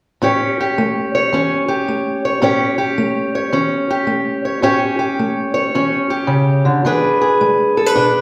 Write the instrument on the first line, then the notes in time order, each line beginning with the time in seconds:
steel-string acoustic guitar
0.22 A2 C#4 G4 C#5
0.60 G4
0.78 A3
1.15 C#5
1.33 E3 C#4
1.68 G4
1.88 A3
2.25 C#5
2.42 A2 C#4 G4 C#5
2.78 G4
2.98 A3
3.35 C#5
3.53 E3 C#4
3.90 G4
4.07 A3
4.45 C#5
4.62 A2 C#4 G4 C#5
4.99 G4
5.19 A3
5.54 C#5
5.75 E3 C#4
6.10 G4
6.27 C#3
6.65 D3
6.85 E3 D4 G#4 B4
7.21 G#4
7.41 G#3
7.77 A4
7.86 B4
7.95 B2 D4